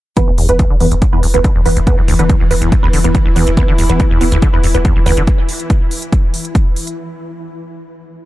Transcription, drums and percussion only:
0.17 kick, closed hi-hat
0.38 open hi-hat
0.49 closed hi-hat
0.59 kick, closed hi-hat
0.80 open hi-hat
0.91 closed hi-hat
1.02 kick, closed hi-hat
1.23 open hi-hat
1.34 closed hi-hat
1.44 kick, closed hi-hat
1.66 open hi-hat
1.77 closed hi-hat
1.87 kick, closed hi-hat
2.08 open hi-hat
2.19 closed hi-hat
2.29 kick, closed hi-hat
2.51 open hi-hat
2.62 closed hi-hat
2.72 kick, closed hi-hat
2.93 open hi-hat
3.04 closed hi-hat
3.15 kick, closed hi-hat
3.36 open hi-hat
3.47 closed hi-hat
3.57 kick, closed hi-hat
3.78 open hi-hat
3.89 closed hi-hat
4.00 kick, closed hi-hat
4.21 open hi-hat
4.32 closed hi-hat
4.42 kick, closed hi-hat
4.63 open hi-hat
4.74 closed hi-hat
4.85 kick, closed hi-hat
5.06 open hi-hat
5.17 closed hi-hat
5.27 kick, closed hi-hat
5.49 open hi-hat
5.60 closed hi-hat
5.70 kick, closed hi-hat
5.91 open hi-hat
6.02 closed hi-hat
6.12 kick, closed hi-hat
6.34 open hi-hat
6.45 closed hi-hat
6.55 kick, closed hi-hat
6.76 open hi-hat
6.87 closed hi-hat

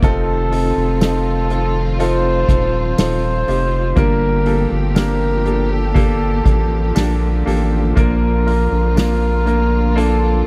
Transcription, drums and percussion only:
0.02 kick, hi-hat pedal, open hi-hat
0.52 hi-hat pedal, open hi-hat
1.01 snare, hi-hat pedal, open hi-hat, tambourine
1.50 hi-hat pedal, open hi-hat
1.99 hi-hat pedal, open hi-hat
2.49 kick, hi-hat pedal, open hi-hat
2.98 snare, hi-hat pedal, open hi-hat, tambourine
3.48 hi-hat pedal, open hi-hat
3.96 kick, hi-hat pedal, open hi-hat
4.46 hi-hat pedal, open hi-hat
4.95 snare, hi-hat pedal, open hi-hat, tambourine
5.46 hi-hat pedal, open hi-hat
5.96 kick, hi-hat pedal, open hi-hat
6.46 kick, hi-hat pedal, open hi-hat
6.96 snare, hi-hat pedal, open hi-hat, tambourine
7.47 hi-hat pedal, open hi-hat
7.97 kick, hi-hat pedal, open hi-hat
8.47 hi-hat pedal, open hi-hat
8.97 snare, hi-hat pedal, open hi-hat, tambourine
9.47 hi-hat pedal, open hi-hat
9.97 hi-hat pedal, open hi-hat

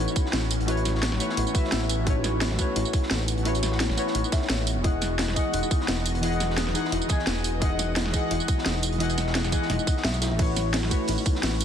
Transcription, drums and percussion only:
0.08 tambourine
0.16 kick, closed hi-hat, tambourine
0.26 snare
0.33 snare, closed hi-hat
0.51 closed hi-hat, open hi-hat, tambourine
0.60 closed hi-hat
0.68 closed hi-hat
0.77 closed hi-hat
0.85 snare, closed hi-hat, tambourine
0.95 snare
1.03 snare, closed hi-hat
1.12 snare
1.20 closed hi-hat, tambourine
1.29 snare
1.37 closed hi-hat
1.47 tambourine
1.55 kick, closed hi-hat, tambourine
1.64 snare
1.72 snare, closed hi-hat
1.89 closed hi-hat, open hi-hat, tambourine
2.07 kick, closed hi-hat
2.24 snare, closed hi-hat, tambourine
2.41 snare, closed hi-hat
2.50 snare
2.59 kick, closed hi-hat, tambourine
2.76 closed hi-hat
2.85 tambourine
2.93 kick, closed hi-hat, tambourine
3.03 snare
3.11 snare, closed hi-hat
3.28 closed hi-hat, open hi-hat, tambourine
3.38 closed hi-hat
3.45 closed hi-hat
3.55 closed hi-hat, tambourine
3.63 snare, closed hi-hat, tambourine
3.72 snare
3.80 snare, closed hi-hat
3.89 snare
3.97 closed hi-hat, tambourine
4.07 snare
4.15 closed hi-hat
4.24 tambourine
4.32 kick, snare, closed hi-hat, tambourine
4.42 snare
4.49 snare, closed hi-hat
4.67 closed hi-hat, open hi-hat, tambourine
4.84 kick, closed hi-hat
5.01 snare, closed hi-hat, tambourine
5.19 snare, closed hi-hat
5.28 snare
5.36 kick, closed hi-hat, tambourine
5.53 closed hi-hat
5.63 tambourine
5.71 kick, closed hi-hat, tambourine
5.80 snare
5.88 snare, closed hi-hat
6.06 closed hi-hat, open hi-hat, tambourine
6.15 closed hi-hat
6.23 closed hi-hat
6.32 closed hi-hat
6.40 snare, closed hi-hat, tambourine
6.50 snare
6.57 snare, closed hi-hat
6.67 snare
6.75 closed hi-hat, tambourine
6.85 snare
6.92 closed hi-hat
7.02 tambourine
7.09 kick, closed hi-hat, tambourine
7.19 snare
7.27 snare, closed hi-hat
7.44 closed hi-hat, open hi-hat, tambourine
7.62 kick, closed hi-hat
7.79 snare, closed hi-hat, tambourine
7.96 snare, closed hi-hat
8.06 snare
8.14 kick, closed hi-hat, tambourine
8.31 closed hi-hat
8.40 tambourine
8.48 kick, closed hi-hat, tambourine
8.58 snare
8.66 snare, closed hi-hat
8.83 closed hi-hat, open hi-hat, tambourine
8.92 closed hi-hat
9.00 closed hi-hat
9.09 closed hi-hat, tambourine
9.17 snare, closed hi-hat, tambourine
9.27 snare
9.35 snare, closed hi-hat
9.44 snare, tambourine
9.52 kick, closed hi-hat, tambourine
9.62 snare
9.70 snare, closed hi-hat
9.79 tambourine
9.87 kick, closed hi-hat, tambourine
9.97 snare
10.04 snare, closed hi-hat
10.14 tambourine
10.22 snare, closed hi-hat, open hi-hat, tambourine
10.39 kick, closed hi-hat, ride
10.56 snare, closed hi-hat, ride, tambourine
10.74 snare, closed hi-hat, ride
10.83 snare
10.91 kick, closed hi-hat, ride, tambourine
11.08 closed hi-hat, ride
11.18 tambourine
11.26 kick, closed hi-hat, ride, tambourine
11.35 snare
11.43 snare, closed hi-hat, ride
11.60 closed hi-hat, open hi-hat, ride, tambourine

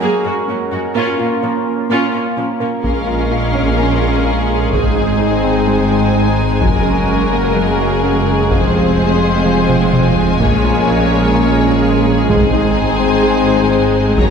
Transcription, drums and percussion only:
2.84 taiko
3.55 taiko
4.73 taiko
6.62 taiko
8.51 taiko
9.69 taiko mid
9.93 taiko mid
10.17 taiko low
10.40 taiko
12.29 taiko
14.18 taiko

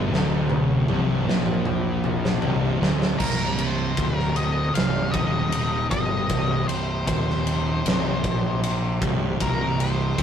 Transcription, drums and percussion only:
0.14 snare
0.50 high tom
0.88 mid tom
1.29 snare
1.46 mid tom
1.65 mid tom
2.04 mid tom
2.25 snare
2.42 floor tom
2.83 snare
3.02 snare
3.20 kick, crash
3.59 ride
3.97 kick, ride
4.19 snare
4.36 ride
4.75 snare, ride
5.14 kick, ride
5.52 ride
5.91 kick, ride
6.30 kick, ride
6.69 ride
7.08 kick, ride
7.30 snare
7.47 ride
7.86 snare, ride
8.24 kick, ride
8.63 ride
9.02 kick, ride
9.40 kick, ride
9.80 ride
10.18 kick, ride

